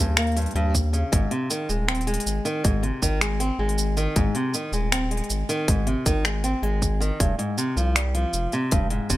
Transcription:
0.00 D#2 G2
0.17 A#3, finger snap, open hi-hat, shaker
0.22 open hi-hat
0.27 open hi-hat
0.32 open hi-hat
0.36 G2, open hi-hat, shaker
0.41 open hi-hat
0.46 open hi-hat
0.51 open hi-hat
0.55 D#2 G2, open hi-hat
0.75 kick, shaker
0.93 C#3, open hi-hat, shaker
1.12 G#1 G#2, kick, open hi-hat, shaker
1.31 C3, open hi-hat
1.50 D#3, shaker
1.69 D#1 G#3, shaker
1.88 C4, finger snap, open hi-hat, shaker
1.95 open hi-hat, shaker
2.01 open hi-hat, shaker
2.07 G#3, open hi-hat, shaker
2.14 open hi-hat, shaker
2.20 open hi-hat, shaker
2.26 G#1, shaker
2.45 D#3, open hi-hat, shaker
2.64 G#1 G#2, kick, open hi-hat, shaker
2.83 C3, open hi-hat
3.02 G#1 D#3, kick, shaker
3.21 G#3, finger snap, open hi-hat, shaker
3.40 C4, open hi-hat, shaker
3.59 G#1 G#3
3.69 open hi-hat
3.78 shaker
3.97 D#3, open hi-hat, shaker
4.16 G#1 G#2, kick, open hi-hat, shaker
4.35 C3, open hi-hat
4.54 D#3, shaker
4.72 D#1 G#3, shaker
4.92 C4, finger snap, open hi-hat, shaker
5.11 G#3, open hi-hat
5.17 open hi-hat
5.24 open hi-hat
5.30 G#1, shaker
5.49 D#3, open hi-hat, shaker
5.68 G#1 G#2, kick, open hi-hat, shaker
5.87 C3, open hi-hat
6.06 G#1 D#3, kick, shaker
6.25 G#3, finger snap, open hi-hat, shaker
6.44 C4, open hi-hat, shaker
6.62 G#1 G#3, open hi-hat
6.82 kick, shaker
7.00 D#3, open hi-hat, shaker
7.20 F1 G2, kick, open hi-hat, shaker
7.39 G#2, open hi-hat
7.58 C3, shaker
7.77 C2 F3, shaker
7.95 G3, finger snap, open hi-hat, shaker
8.15 F3, open hi-hat
8.33 F1, shaker
8.52 C3, open hi-hat, shaker
8.71 F1 G2, kick, open hi-hat, shaker
8.90 G#2, open hi-hat
9.10 F1 C3, kick, shaker

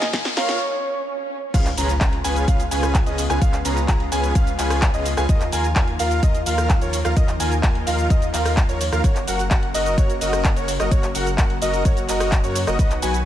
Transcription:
Already playing: D#2 D#3 F3 A#3 F4, riser
0.02 snare, closed hi-hat
0.13 D#2 F4 A#4 G#5, kick, snare, closed hi-hat
0.25 snare
0.37 D#2 F4 A#4 C#5 F5, snare, open hi-hat
0.49 snare, closed hi-hat
0.60 swell
1.54 C#2 C#3 G#3 B3 C#4 F4 G#4 B4 F5, kick, closed hi-hat, crash, impact, shaker
1.66 clap, closed hi-hat, shaker
1.77 C#2 C#4 F4 G#4 B4 A#5, open hi-hat, shaker
1.89 closed hi-hat, shaker
2.01 C#2 C#4 F4 G#4 A#5, kick, clap, closed hi-hat, shaker
2.13 closed hi-hat
2.24 C#2 C#4 F4 G#4 B4 G#5, open hi-hat, shaker
2.36 closed hi-hat, shaker
2.48 C#2 F4 F5, kick, closed hi-hat, shaker
2.60 closed hi-hat, shaker
2.71 C#2 C#4 F4 G#4 B4 G#5, open hi-hat, shaker
2.83 cross-stick, closed hi-hat, shaker
2.95 kick, clap, closed hi-hat, shaker
3.06 C#2 C#4 F4 G#4 B4 D#5, closed hi-hat, shaker
3.18 open hi-hat, shaker
3.30 C#2 C#4 F4 G#4 B4 G#5, cross-stick, closed hi-hat, shaker
3.41 C#2 C#4 F4 G#4 F5, kick, closed hi-hat, shaker
3.53 clap, closed hi-hat, shaker
3.65 C#2 C#4 F4 G#4 B4 A#5, open hi-hat, shaker
3.77 closed hi-hat, shaker
3.88 C#2 C#4 F4 G#4 A#5, kick, clap, closed hi-hat, shaker
4.00 closed hi-hat
4.12 C#2 C#4 F4 G#4 B4 G#5, open hi-hat, shaker
4.23 closed hi-hat, shaker
4.35 C#2 C#4 F4 G#4 B4 F5, kick, closed hi-hat, shaker
4.47 closed hi-hat, shaker
4.58 C#2 C#4 F4 G#4 B4 G#5, clap, open hi-hat, shaker
4.70 cross-stick, open hi-hat, shaker
4.82 kick, clap, closed hi-hat, shaker
4.94 C#2 C#4 F4 G#4 B4 D#5, closed hi-hat, shaker
5.05 open hi-hat, shaker
5.17 C#2 C#4 F4 G#4 B4 G#5, cross-stick, closed hi-hat, shaker
5.29 D#2 D#3 F3 A#3 F4 A#4 D#5, kick, closed hi-hat, shaker
5.40 clap, closed hi-hat, shaker
5.52 D#2 F4 A#4 G#5, open hi-hat, shaker
5.64 closed hi-hat, shaker
5.76 D#2 F4 A#4 G#5, kick, clap, closed hi-hat, shaker
5.88 closed hi-hat
5.99 D#2 F4 A#4 F5, open hi-hat, shaker
6.11 closed hi-hat, shaker
6.23 D#2 F4 A#4 D#5, kick, closed hi-hat, shaker
6.35 closed hi-hat, shaker
6.46 D#2 F4 A#4 F5, open hi-hat, shaker
6.58 cross-stick, closed hi-hat, shaker
6.69 kick, clap, closed hi-hat, shaker
6.81 D#2 F4 A#4 C#5, closed hi-hat, shaker
6.93 open hi-hat, shaker
7.05 D#2 F4 A#4 F5, cross-stick, closed hi-hat, shaker
7.17 D#2 D#4 F4 A#4 D#5, kick, closed hi-hat, shaker
7.28 clap, closed hi-hat, shaker
7.40 D#2 F4 A#4 G#5, open hi-hat, shaker
7.52 closed hi-hat, shaker
7.63 D#2 F4 A#4 G#5, kick, clap, closed hi-hat, shaker
7.75 closed hi-hat
7.87 D#2 F4 A#4 F5, open hi-hat, shaker
7.99 closed hi-hat, shaker
8.10 D#2 F4 D#5, kick, closed hi-hat, shaker
8.22 closed hi-hat, shaker
8.34 D#2 F4 A#4 F5, clap, open hi-hat, shaker
8.45 cross-stick, open hi-hat, shaker
8.57 kick, clap, closed hi-hat, shaker
8.69 D#2 F4 A#4 C#5, closed hi-hat, shaker
8.81 open hi-hat, shaker
8.92 D#2 F4 A#4 F5, cross-stick, closed hi-hat, shaker
9.04 F#1 C#3 F#3 F#4 A#4 C#5, kick, closed hi-hat, shaker
9.16 clap, closed hi-hat, shaker
9.27 F#1 F#4 A#4 F#5, open hi-hat, shaker
9.39 closed hi-hat, shaker
9.51 F#1 F#4 A#4 F#5, kick, clap, closed hi-hat, shaker
9.63 closed hi-hat
9.74 F#1 F#4 A#4 D#5, open hi-hat, shaker
9.86 closed hi-hat, shaker
9.98 F#1 F#4 C#5, kick, closed hi-hat, shaker
10.10 closed hi-hat, shaker
10.21 F#1 F#4 A#4 D#5, open hi-hat, shaker
10.33 cross-stick, closed hi-hat, shaker
10.44 kick, clap, closed hi-hat, shaker
10.56 F#1 F#4 A#4 C#5, closed hi-hat, shaker
10.68 open hi-hat, shaker
10.80 F#1 F#4 A#4 D#5, cross-stick, closed hi-hat, shaker
10.91 F#1 F#4 A#4 C#5, kick, closed hi-hat, shaker
11.03 clap, closed hi-hat, shaker
11.15 F#1 F#4 A#4 F#5, open hi-hat, shaker
11.27 closed hi-hat, shaker
11.38 F#1 F#4 A#4 F#5, kick, clap, closed hi-hat, shaker
11.50 closed hi-hat
11.62 F#1 F#4 A#4 D#5, open hi-hat, shaker
11.73 closed hi-hat, shaker
11.85 F#1 F#4 A#4 C#5, kick, closed hi-hat, shaker
11.97 closed hi-hat, shaker
12.08 F#1 F#4 A#4 D#5, clap, open hi-hat, shaker
12.20 cross-stick, open hi-hat, shaker
12.32 kick, clap, closed hi-hat, shaker
12.44 F#2 F#4 A#4 C#5, closed hi-hat, shaker
12.55 open hi-hat, shaker
12.67 F#1 F#4 A#4 D#5, cross-stick, closed hi-hat, shaker
12.79 B1 D#3 B3 F#4 B4 D#5, kick, closed hi-hat, shaker
12.90 clap, closed hi-hat, shaker
13.02 B1 F#4 B4 G#5, open hi-hat, shaker
13.14 closed hi-hat, shaker

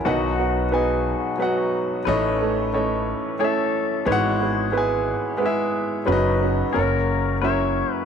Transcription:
Already playing: E3 A#3 C#4
0.05 B1 B2 D#3 F#3 B3 D#4 F#4 B4 D#5 F#5
0.09 B4
0.39 B3 D#4 F#4
0.71 F#3 B3 D#4 G#4 B4 D#5 G#5
1.38 F#3 B3 D#4 F#4 B4
1.42 F#4 D#5 F#5
2.05 A1 A2 E3 A3 C#4 B4 C#5 D#5
2.10 D#4 A4
2.41 A3 C#4 A4
2.73 A3 C#4 E4 C#5 D#5
3.39 A3 C#4 E4 A4 C#5
3.44 E4 C#5 E5
4.05 G#1 G#2 E3 G#3 B3 E4 B4 C#5
4.11 F#4 B4 F#5
4.40 B3 E4 G#4
4.72 G#3 B3 E4 B4
4.77 G#4 B4 G#5
5.37 G#3 B3 E4 B4
5.42 E4 G#4 E5
6.05 F#1 F#2 F#3 B3 C#4 B4
6.12 D#4 F#4 B4 D#5
6.41 B3 C#4 F#4
6.73 F#1 F#2 F#3 A#3 C#4 A#4
6.79 C#4 F#4 A#4 C#5
7.42 F#3 A#3 C#4 E4 F#4 A#4 C#5 E5
7.94 B4

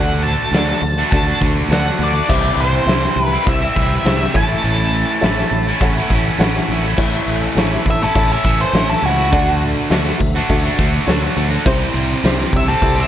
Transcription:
Already playing: D2 D3 A3 D4 F#4 A4 D5 F#5
0.23 A5, shaker
0.40 shaker
0.51 D2 D3 A3 D4, snare, open hi-hat, shaker
0.56 F#4 A4 D5
0.68 A3 D4 F#4
0.81 D2, muted distorted electric guitar stroke, shaker
0.98 A3 D4 F#4
1.10 D2 D4 F#4 D5 A5, kick, open hi-hat, shaker
1.14 A4
1.26 A3 D4 F#4
1.41 D2 D3 A3 D4 F#4, kick, shaker
1.69 D2 D3 A3 D4 F#4 A4 D5, open hi-hat, shaker
1.73 F#4 F#5, snare
1.86 A3 D4 F#4
1.99 D2 D3 A3 D4, shaker
2.03 F#4 D5
2.16 A3 D4 F#4
2.28 C2 C3 E3 G3 C4 E4 G4 C5 E5, kick, crash, shaker
2.56 C2, shaker
2.60 C5
2.75 shaker
2.86 C2 C3 E3 E4 G4 C5 E5, snare, open hi-hat, shaker
2.90 G3 C4 E4
3.03 G3 C4 E4
3.16 C2, muted distorted electric guitar stroke, shaker
3.21 B4
3.32 G3 C4 E4
3.46 C2 E4 G4 C5 E5, kick, open hi-hat, shaker
3.62 G3 C4 E4
3.75 C2 E3 G3 C4 E4, kick, shaker
4.04 C2 C3 E3 G3 C4 E4 G4 C5 E5, snare, open hi-hat, shaker
4.21 G3 C4 E4
4.34 A1 A2 E3 A3 C#4 E4 A4 C#5 E5 A5, kick, shaker
4.49 A3 C#4 E4
4.63 A1 A2 E3 A3 C#4 E4, open hi-hat, shaker
4.80 shaker
4.95 shaker
5.09 shaker
5.21 A1 A2 E3 C#4 E4 A4 C#5 E5, snare, open hi-hat, shaker
5.39 A3 C#4 E4
5.51 A1, muted distorted electric guitar stroke, shaker
5.68 A3 C#4 E4
5.81 A1 E4 A4 C#5 F#5, kick, open hi-hat, shaker
5.97 A3 C#4 E4
6.10 A1 E3 A3, kick, shaker
6.14 C#4 E4
6.38 A1 A2 E4 A4 C#5 F#5, snare, open hi-hat, shaker
6.43 E3 A3 C#4 E4
6.55 A3 C#4 E4, shaker
6.68 A1 E3 A3, shaker
6.73 C#4 E4
6.85 A3 C#4 E4, shaker
6.97 A1 A2 E3 A3 C#4 E4 A4 C#5 E5, kick, crash, shaker
7.26 A1, open hi-hat, shaker
7.43 shaker
7.55 A1 A2 E3 A3 C#4 E4 A4 C#5 E5, snare, open hi-hat, shaker
7.73 A3 C#4 E4
7.85 A1, muted distorted electric guitar stroke, kick, snare, open hi-hat, shaker
7.90 E5
8.01 A3 C#4 E4 A4
8.15 A1 E4 A4 C#5 E5, kick, open hi-hat, shaker
8.31 A3 C#4 E4 E5
8.44 A1 E3 A3 C#4 E4, kick, open hi-hat, shaker
8.61 C5
8.73 A1 A2 E3 A3 C#4 E4 A4 C#5 E5, snare, open hi-hat, shaker
8.88 A3 C#4 E4 A4
9.02 C#2 E3 A3 C#4 E4 F#4, open hi-hat, shaker
9.17 A3 C#4 E4
9.30 D2 D3 A3 D4 F#4 A4 D5, kick, open hi-hat, shaker
9.61 open hi-hat, shaker
9.77 shaker
9.90 D2 D3 A3 D4 F#4 A4 E5, snare, open hi-hat, shaker
10.05 A3 D4 F#4
10.19 D2, muted distorted electric guitar stroke, kick, open hi-hat, shaker
10.36 A3 D4 F#4
10.49 D2 D4 F#4 A4 E5, kick, open hi-hat, shaker
10.65 A3 D4 F#4
10.78 D2 D3 A3 D4 F#4, kick, open hi-hat, shaker
11.07 D2 D3 A3 D4 F#4 A4 C#5, snare, open hi-hat, shaker
11.23 A3 D4 F#4
11.36 D2 D3 A3 D4 F#4, open hi-hat, shaker
11.51 A3 D4 F#4
11.66 C2 C3 E3 G3 C4 E4 G4 C5, kick, crash, shaker
11.94 C2, open hi-hat, shaker
12.09 shaker
12.23 C2 C3 E3 G3 C4 E4 G4 C5, snare, open hi-hat, shaker
12.38 G3 C4 G4
12.53 C2 E5, muted distorted electric guitar stroke, kick, open hi-hat, shaker
12.67 G3 C4 G4 A4
12.81 C2 C4 E4 G4 C5, kick, open hi-hat, shaker
12.96 G3 C4 G4
13.01 E5

